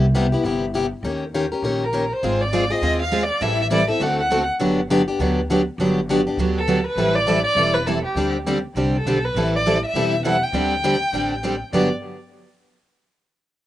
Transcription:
Already playing: C2
0.15 C3 G3 B3 E4 G4
0.32 B3 E4 G4
0.44 G1 C3 G3 B3 E4 G4
0.74 C3 G3 B3 E4 G4
1.03 D#2 D#3 A#3 C#4 G4 A#4
1.34 D#3 A#3 C#4 G4 A#4
1.52 C#4 G4 A#4
1.62 A#1 D#3 A#3 C#4 G4 A#4
1.84 A#4
1.93 D#3 A#3 C#4 G4 A#4
2.13 C5
2.23 G#1 G#3 C4 F4 G#4
2.41 D5
2.53 G#3 C4 F4 G#4
2.70 C4 F4 G#4 D#5
2.82 D#2 G#3 C4 F4 G#4
3.02 F5
3.12 G#3 C4 F4 G#4
3.23 D5
3.41 A1 E3 G3 C4 E4 A4 E5
3.62 E5
3.70 E3 G3 C4 E4 A4 D5
3.88 C4 E4 A4 E5
4.00 D2 D3 A3 C4 F#4 A4 F#5
4.20 F#5
4.31 D3 A3 C4 F#4 A4
4.60 G1 D3 F#3 B3 D4 G4
4.90 D3 F#3 B3 D4 G4
5.08 B3 D4 G4
5.19 D2 D3 F#3 B3 D4 G4
5.50 D3 F#3 B3 D4 G4
5.78 G1 D3 F#3 B3 D4 G4
6.09 D3 F#3 B3 D4 G4
6.27 B3 D4 G4
6.37 D2 D3 F#3 B3 D4 G4
6.58 A4
6.68 D3 F#3 B3 D4 G4
6.86 B4
6.96 A1 E3 G3 C4 E4 A4
7.16 D5
7.27 E3 G3 C4 E4 A4
7.44 D5
7.55 E1 E3 G3 C4 E4 A4
7.74 B4
7.87 E3 G3 C4 E4 A4
8.05 G4
8.15 D2 D3 G3 C4 D4 G4
8.46 D3 G3 C4 D4 G4
8.75 C2 D3 G3 C4 D4 G4
8.97 A4
9.05 B1 D3 G3 C4 D4 G4
9.25 B4
9.34 A1 E3 G3 C4 E4 A4
9.56 D5
9.67 E3 G3 C4 E4 A4
9.85 E5
9.94 E1 E3 G3 C4 E4 A4
10.24 E3 G3 C4 E4 A4 F#5
10.43 G5
10.52 D2 D3 G3 C4 D4 G4
10.84 D3 G3 C4 D4 G4
11.13 A1 D3 G3 C4 D4 G4
11.43 D3 G3 C4 D4 G4
11.73 G1 G2 D3 F#3 B3 D4 G4 D5

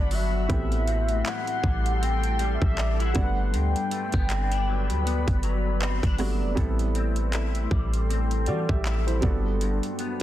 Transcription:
Already playing: G1 G2 F#3 B3 D4 F#4 D5 F#5 B5
0.11 F#3 E5, open hi-hat
0.48 A1 E3 A3 B3 C4 G4 A4 C6, kick, closed hi-hat
0.72 closed hi-hat
0.88 C4, closed hi-hat
1.08 closed hi-hat
1.26 E4 F#5, clap, closed hi-hat
1.47 closed hi-hat
1.64 A1 G3, kick
1.86 closed hi-hat
2.02 C4 G5, closed hi-hat
2.23 closed hi-hat
2.39 G3, closed hi-hat
2.55 E5
2.62 A1, kick
2.77 D4, clap, closed hi-hat
2.99 E4, closed hi-hat
3.05 F#5
3.14 G1 G2 G3 A3 B3 D4 F#4 B4 D5 B5, kick, closed hi-hat
3.24 B4
3.54 D2 G2 G5, closed hi-hat
3.76 closed hi-hat
3.91 A3, closed hi-hat
4.12 G1 B3, kick, closed hi-hat
4.30 C4, clap, closed hi-hat
4.52 D4, closed hi-hat
4.68 F#3
4.90 D2, closed hi-hat
5.05 B3, closed hi-hat
5.28 G1, kick, closed hi-hat
5.43 F#3, closed hi-hat
5.81 C4, clap, closed hi-hat
6.03 G1 D4, kick, closed hi-hat
6.18 F#3 G3 A3 B3 D4 F#4, cross-stick, open hi-hat
6.42 F#1
6.55 A1 A2 G3 B3 C4 E4 A4 G5 C6, kick, closed hi-hat
6.79 closed hi-hat
6.95 C4, closed hi-hat
7.16 closed hi-hat
7.33 E4, clap, closed hi-hat
7.55 closed hi-hat
7.71 A1 G3, kick
7.93 closed hi-hat
8.09 C4, closed hi-hat
8.31 closed hi-hat
8.46 E3 G3 F#4 D5, closed hi-hat
8.69 A1 G4 E5, kick
8.85 E4, clap, closed hi-hat
9.07 E4 C5, closed hi-hat
9.21 G1 G2 G3 B3 D4 F#4 A4 F#5 B5, kick, closed hi-hat
9.61 G2, closed hi-hat
9.83 closed hi-hat
9.99 B3, closed hi-hat

